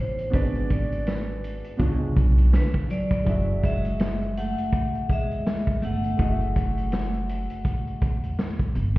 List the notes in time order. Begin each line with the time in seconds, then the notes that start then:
Already playing: A1 B2 C#4 D#4 G4 A#4
0.00 C5
0.19 closed hi-hat
0.30 G#1 B3 D4 F#4 G#4 B4, kick, closed hi-hat
0.35 D5
0.55 closed hi-hat
0.70 D5, kick, closed hi-hat
0.92 closed hi-hat
1.07 B4, snare, closed hi-hat
1.44 closed hi-hat
1.64 closed hi-hat
1.77 C#2 B3 D4 F4 G#4, kick, closed hi-hat
1.82 C#4
2.17 B1, kick, closed hi-hat
2.38 closed hi-hat
2.53 D3 B4, snare, closed hi-hat
2.74 kick
2.90 F#3 D5, closed hi-hat
3.11 kick, closed hi-hat
3.24 F#1 G#3 E4 F#4 G#4, kick, closed hi-hat
3.29 F#3 E5
3.63 G#3 E5, kick, closed hi-hat
3.85 closed hi-hat
3.99 snare, closed hi-hat
4.21 closed hi-hat
4.37 A3 F#5, closed hi-hat
4.58 closed hi-hat
4.73 kick, closed hi-hat
4.95 closed hi-hat
5.09 E2 G#3 E5, kick, closed hi-hat
5.31 closed hi-hat
5.47 snare, closed hi-hat
5.67 kick, closed hi-hat
5.82 G1 A3 F#5, closed hi-hat
6.04 closed hi-hat
6.17 F#1 A3 E4 F#4 G#4, kick, closed hi-hat
6.22 D#5
6.28 E5
6.41 closed hi-hat
6.56 kick, closed hi-hat
6.77 closed hi-hat
6.92 snare, closed hi-hat
7.14 closed hi-hat
7.29 closed hi-hat
7.50 closed hi-hat
7.65 kick, closed hi-hat
7.87 closed hi-hat
8.02 E2, kick, closed hi-hat
8.23 closed hi-hat
8.39 snare, closed hi-hat
8.59 kick, closed hi-hat
8.75 G1, closed hi-hat